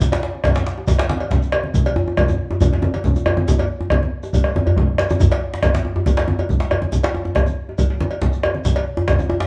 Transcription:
0.00 bombo low, djembe slap, low conga, djembe bass, shekere
0.12 cowbell, djembe slap, high conga
0.23 djembe slap
0.35 high conga
0.44 bombo rim, bombo low, cowbell, djembe slap, djembe tone, low conga, djembe bass, shekere
0.55 djembe slap, high conga, shekere
0.67 djembe slap
0.78 djembe tone
0.87 bombo low, cowbell, djembe slap, low conga, djembe bass, shekere
0.99 bombo rim, djembe slap
1.09 djembe slap, high conga
1.20 cowbell, high conga, djembe tone
1.31 bombo low, djembe slap, high conga, low conga, djembe bass, shekere
1.42 shekere
1.52 bombo rim, cowbell, high conga, djembe tone
1.63 bombo rim, high conga
1.74 bombo low, djembe slap, low conga, djembe bass, shekere
1.86 cowbell, djembe slap, high conga, djembe tone
1.96 djembe tone
2.07 high conga, djembe tone
2.17 bombo rim, bombo low, cowbell, djembe slap, djembe tone, low conga, djembe bass, shekere
2.28 high conga, djembe tone, shekere
2.51 djembe tone
2.61 bombo low, cowbell, djembe tone, low conga, djembe bass, shekere
2.73 djembe slap, djembe tone
2.82 djembe slap, high conga, djembe tone
2.94 cowbell, high conga, djembe tone
3.04 bombo low, djembe slap, high conga, low conga, djembe bass, shekere
3.15 djembe tone, shekere
3.26 bombo rim, cowbell, djembe tone, high conga
3.37 bombo rim, djembe tone, high conga
3.47 bombo low, djembe tone, high conga, low conga, djembe bass, shekere
3.58 bombo rim, cowbell, djembe slap, djembe tone
3.70 djembe slap
3.81 djembe tone
3.90 bombo rim, bombo low, cowbell, djembe slap, high conga, djembe tone, low conga, djembe bass
4.02 djembe slap, high conga
4.23 bombo rim, djembe tone, shekere
4.33 bombo low, cowbell, high conga, djembe bass, low conga, shekere
4.44 bombo rim, djembe slap
4.55 bombo rim, high conga, djembe tone
4.66 bombo rim, cowbell, djembe tone, djembe bass
4.76 bombo rim, bombo low, djembe slap, low conga, djembe bass
4.87 bombo rim, djembe slap
4.98 bombo rim, cowbell, djembe slap, djembe tone
5.09 bombo rim, high conga, djembe tone, shekere
5.20 bombo low, djembe slap, djembe bass, low conga, shekere
5.31 cowbell, djembe slap, djembe tone, high conga
5.54 djembe slap, high conga
5.63 bombo rim, bombo low, cowbell, djembe slap, djembe tone, low conga, djembe bass, shekere
5.74 djembe slap, high conga, shekere
5.85 djembe tone
5.96 djembe tone
6.06 bombo low, cowbell, low conga, djembe bass, shekere
6.17 bombo rim, djembe slap
6.28 high conga, djembe tone
6.39 cowbell, high conga, djembe tone
6.49 bombo low, djembe slap, high conga, low conga, djembe bass, shekere
6.60 djembe slap, shekere
6.71 bombo rim, cowbell, high conga, djembe tone
6.82 bombo rim, high conga, djembe tone
6.92 bombo low, djembe slap, low conga, djembe bass, shekere
7.03 cowbell, djembe slap, high conga, djembe tone
7.15 djembe tone
7.25 high conga, djembe tone
7.35 bombo rim, bombo low, cowbell, djembe slap, djembe tone, low conga, djembe bass, shekere
7.46 high conga, shekere
7.69 djembe tone
7.78 bombo low, cowbell, low conga, djembe bass, shekere
7.90 djembe slap
8.00 djembe slap, high conga, djembe tone
8.11 cowbell, high conga, djembe tone
8.21 bombo low, djembe slap, high conga, low conga, djembe bass, shekere
8.33 shekere
8.43 bombo rim, cowbell, djembe tone, high conga
8.55 bombo rim, high conga
8.65 bombo low, djembe slap, low conga, djembe bass, shekere
8.76 cowbell, djembe slap, djembe tone, high conga
8.97 djembe tone, high conga
9.08 bombo rim, bombo low, cowbell, djembe slap, djembe tone, low conga, djembe bass, shekere
9.19 djembe tone, high conga, shekere
9.30 djembe tone
9.40 djembe slap, djembe tone

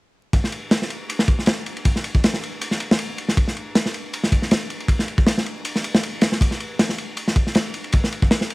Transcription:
0.33 kick, ride
0.44 snare
0.52 ride
0.71 snare, ride
0.82 snare
0.90 ride
1.10 ride
1.19 snare
1.28 kick, ride
1.39 snare
1.46 snare, ride
1.66 ride
1.77 ride
1.85 kick, ride
1.96 snare
2.04 ride
2.15 kick
2.24 snare, ride
2.34 snare
2.43 ride
2.61 ride
2.71 snare
2.80 ride
2.91 snare
2.99 ride
3.18 ride
3.29 snare
3.37 kick, ride
3.48 snare
3.57 ride
3.75 snare, ride
3.86 snare
3.94 ride
4.13 ride
4.23 snare
4.32 kick, ride
4.42 snare
4.51 snare, ride
4.70 ride
4.80 ride
4.88 kick, ride
4.99 snare
5.08 ride
5.18 kick
5.27 snare, ride
5.38 snare
5.46 ride
5.65 ride
5.76 snare
5.84 ride
5.95 snare
6.03 ride
6.21 snare, ride
6.32 snare
6.41 kick, ride
6.51 snare
6.60 ride
6.79 snare, ride
6.89 snare
6.98 ride
7.17 ride
7.28 snare
7.36 kick, ride
7.47 snare
7.55 snare, ride
7.74 ride
7.84 ride
7.92 kick, ride
8.04 snare
8.12 ride
8.22 kick
8.31 snare, ride
8.41 snare
8.50 ride

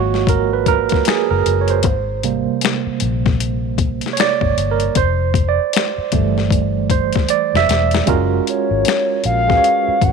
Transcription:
Already playing: G#1 G#3 A#3 F4 F#4 C#5 D#5
0.14 snare
0.27 A#4, kick, closed hi-hat
0.53 B4
0.66 A#4, kick, closed hi-hat
0.89 kick, closed hi-hat
0.94 snare
1.05 G#4, finger snap, snare, closed hi-hat
1.31 F#1 A#4
1.46 F#1, closed hi-hat
1.61 C#5
1.68 C5, closed hi-hat
1.83 G#1, kick, closed hi-hat
2.23 C3 G3 A#3, closed hi-hat
2.61 snare, closed hi-hat
2.65 finger snap
2.87 muted fingered electric bass stroke
3.00 A#1, closed hi-hat
3.26 kick, snare
3.40 closed hi-hat
3.78 kick, closed hi-hat
4.01 closed hi-hat
4.06 snare
4.13 C#5, closed hi-hat
4.20 D5, finger snap, snare
4.41 G#1, kick
4.57 G1, closed hi-hat
4.71 A#4
4.80 closed hi-hat
4.95 F1 C5, kick, closed hi-hat
5.34 kick, closed hi-hat
5.49 D5
5.73 snare, closed hi-hat
5.77 finger snap
5.98 muted fingered electric bass stroke
6.12 G1 E3 G3 A3, kick, closed hi-hat
6.38 snare
6.51 kick, closed hi-hat
6.90 C5, kick, closed hi-hat
7.13 kick, closed hi-hat
7.17 snare
7.29 D5, closed hi-hat
7.54 F1 E5, snare
7.69 E1, snare, closed hi-hat
7.91 snare, closed hi-hat
8.06 F#1 G#3 C#4 F4 F#4 A#4, kick, closed hi-hat
8.47 C#5, closed hi-hat
8.71 G#1
8.85 snare, closed hi-hat
8.89 finger snap
9.24 A#1 F5, closed hi-hat
9.47 G#3 C#4 F#4 G#4 B4, kick, snare
9.57 C#5
9.64 closed hi-hat
9.88 muted fingered electric bass stroke
10.02 G#1 F#5, kick, closed hi-hat

